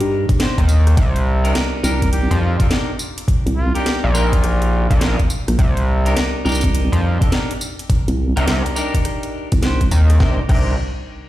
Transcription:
0.00 0.26 G2 loud
0.00 0.25 D4 medium
0.00 0.25 D#4 medium
0.00 0.25 G4 medium
0.00 0.25 A#4 loud
0.00 closed hi-hat soft
0.29 kick loud
0.29 closed hi-hat medium
0.39 0.59 D4 medium
0.39 0.59 D#4 medium
0.39 0.59 G4 medium
0.39 0.59 C5 medium
0.39 snare loud
0.39 closed hi-hat medium
0.58 0.96 D#2 medium
0.58 kick medium
0.58 closed hi-hat soft
0.69 tambourine medium
0.87 cross-stick medium
0.87 closed hi-hat medium
0.97 1.53 C2 loud
0.97 kick loud
0.97 closed hi-hat medium
1.16 closed hi-hat soft
1.44 1.81 D4 medium
1.44 1.81 D#4 medium
1.44 1.81 G4 medium
1.44 1.81 A#4 medium
1.44 closed hi-hat medium
1.55 snare loud
1.55 closed hi-hat medium
1.83 2.28 C2 loud
1.83 2.55 D4 medium
1.83 2.55 D#4 medium
1.83 2.55 G4 medium
1.83 2.55 A#4 loud
1.83 1.96 A#4 medium
1.83 tambourine medium
2.02 2.09 A#4 medium
2.02 kick medium
2.02 closed hi-hat medium
2.13 2.39 G4 loud
2.13 closed hi-hat medium
2.31 2.57 F2 loud
2.31 closed hi-hat soft
2.41 2.53 F4 medium
2.59 2.69 D4 medium
2.59 2.69 D#4 medium
2.59 2.66 F4 medium
2.59 2.69 G4 medium
2.59 2.69 A4 medium
2.59 kick loud
2.59 closed hi-hat soft
2.70 2.90 D4 medium
2.70 2.90 D#4 medium
2.70 2.90 G4 medium
2.70 2.90 A#4 medium
2.70 snare loud
2.70 closed hi-hat medium
2.99 tambourine medium
3.18 closed hi-hat medium
3.28 kick loud
3.28 closed hi-hat medium
3.46 3.72 C2 loud
3.46 closed hi-hat soft
3.57 3.71 F4 loud
3.75 4.12 D4 medium
3.75 4.12 D#4 medium
3.75 4.00 G4 loud
3.75 4.12 G4 medium
3.75 4.12 A#4 medium
3.75 closed hi-hat soft
3.86 snare loud
3.86 closed hi-hat medium
4.04 4.88 A#1 loud
4.14 4.86 D4 medium
4.14 4.86 D#4 medium
4.14 4.97 F4 medium
4.14 4.86 G4 medium
4.14 4.86 A#4 loud
4.14 cross-stick soft
4.14 tambourine medium
4.33 kick medium
4.33 closed hi-hat medium
4.44 cross-stick soft
4.44 closed hi-hat medium
4.62 closed hi-hat soft
4.90 5.16 A#1 loud
4.90 4.99 D4 medium
4.90 5.00 D#4 medium
4.90 4.99 G4 medium
4.90 4.99 A4 medium
4.90 kick loud
4.90 closed hi-hat medium
5.01 5.21 D4 medium
5.01 5.21 D#4 medium
5.01 5.21 G4 medium
5.01 5.21 A#4 medium
5.01 snare loud
5.01 closed hi-hat medium
5.19 kick medium
5.19 closed hi-hat soft
5.30 tambourine medium
5.48 5.57 A#1 loud
5.48 cross-stick medium
5.48 closed hi-hat medium
5.59 6.15 C2 loud
5.59 kick loud
5.59 closed hi-hat medium
5.77 closed hi-hat soft
6.05 6.43 D4 medium
6.05 6.43 D#4 medium
6.05 6.43 G4 medium
6.05 6.43 A#4 loud
6.05 closed hi-hat medium
6.17 snare loud
6.17 closed hi-hat medium
6.45 6.90 C2 loud
6.45 7.17 D4 medium
6.45 7.17 D#4 medium
6.45 7.17 G4 medium
6.45 7.17 A#4 loud
6.45 tambourine soft
6.49 tambourine soft
6.52 tambourine soft
6.55 tambourine soft
6.61 kick medium
6.61 closed hi-hat soft
6.61 tambourine medium
6.75 closed hi-hat medium
6.92 7.18 F2 loud
6.92 closed hi-hat soft
7.21 7.30 D4 medium
7.21 7.30 D#4 medium
7.21 7.30 G4 medium
7.21 7.30 A4 medium
7.21 kick loud
7.21 closed hi-hat medium
7.32 7.51 D4 medium
7.32 7.51 D#4 medium
7.32 7.51 G4 medium
7.32 7.51 A#4 medium
7.32 snare loud
7.32 closed hi-hat medium
7.51 closed hi-hat soft
7.61 tambourine medium
7.79 closed hi-hat medium
7.90 kick loud
7.90 closed hi-hat medium
8.08 8.34 C2 loud
8.08 closed hi-hat soft
8.36 8.46 C2 loud
8.36 8.74 D4 medium
8.36 8.74 D#4 medium
8.36 8.74 G4 medium
8.36 8.74 A#4 medium
8.36 closed hi-hat medium
8.47 8.63 C2 loud
8.47 snare loud
8.47 closed hi-hat medium
8.66 closed hi-hat soft
8.76 9.48 D4 medium
8.76 9.48 D#4 medium
8.76 9.48 G4 medium
8.76 9.48 A#4 loud
8.76 cross-stick soft
8.76 tambourine medium
8.94 kick medium
8.94 closed hi-hat medium
9.05 cross-stick soft
9.05 closed hi-hat medium
9.23 closed hi-hat soft
9.52 9.90 C2 loud
9.52 kick loud
9.52 closed hi-hat medium
9.62 9.82 D4 medium
9.62 9.82 D#4 medium
9.62 9.82 G4 medium
9.62 9.82 C5 medium
9.62 snare loud
9.62 closed hi-hat medium
9.81 kick medium
9.81 closed hi-hat soft
9.91 10.19 D#2 loud
9.91 tambourine medium
10.10 cross-stick medium
10.10 closed hi-hat medium
10.20 10.39 D4 medium
10.20 10.39 D#4 medium
10.20 10.39 G4 medium
10.20 10.39 A#4 medium
10.20 kick loud
10.20 snare medium
10.49 10.76 C2 loud
10.49 10.72 D4 medium
10.49 10.72 D#4 medium
10.49 10.72 G4 medium
10.49 10.72 A#4 medium
10.49 kick loud
10.49 crash medium

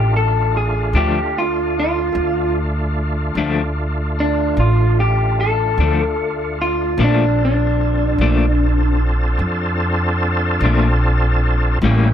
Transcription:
0.00 0.90 A1 medium
0.00 2.10 A3 medium
0.00 2.10 D4 medium
0.00 2.09 F4 medium
0.00 0.14 G4 medium
0.17 0.54 A4 medium
0.57 0.95 G#4 medium
0.93 2.11 D2 medium
0.93 1.19 D3 medium
0.93 1.19 F3 medium
0.93 1.19 A3 medium
0.93 1.19 D4 medium
0.93 1.35 G4 medium
1.38 1.76 F4 medium
1.80 2.56 F4 medium
2.12 3.32 D2 loud
2.12 6.94 A3 medium
2.12 6.95 D4 medium
2.12 6.94 F4 medium
3.35 4.53 D2 medium
3.35 3.62 D3 medium
3.35 3.61 F3 medium
3.35 3.61 A3 medium
3.35 3.61 D4 medium
4.20 4.58 D4 medium
4.57 5.74 A1 medium
4.57 4.98 F4 medium
5.00 5.38 G4 medium
5.41 6.57 A4 medium
5.78 6.95 D2 medium
5.78 6.04 D3 medium
5.78 6.04 F3 medium
5.78 6.04 A3 medium
5.78 6.03 D4 medium
6.62 6.99 F4 medium
6.97 8.15 A#1 loud
6.97 7.23 A#2 medium
6.97 7.24 F3 medium
6.97 7.24 A3 medium
6.97 11.79 C4 medium
6.97 11.78 D4 medium
6.97 7.24 D4 medium
6.97 11.79 F4 medium
6.97 11.79 A4 medium
7.04 7.41 D4 medium
7.45 9.00 D4 medium
8.18 9.36 A#1 medium
8.18 8.45 F3 medium
8.18 8.45 A3 medium
8.18 8.45 D4 medium
8.22 8.46 A#2 medium
9.39 10.57 F2 medium
10.61 11.79 A#1 medium
10.61 10.87 D4 medium
10.65 10.88 A#2 medium
10.65 10.88 F3 medium
10.65 10.88 A3 medium
11.82 12.13 A1 loud
11.82 12.07 A2 medium
11.82 12.08 G3 medium
11.82 12.13 A#3 medium
11.82 12.08 A#3 medium
11.82 12.13 C#4 medium
11.82 12.08 C#4 medium
11.82 12.13 E4 medium
11.82 12.13 G4 medium

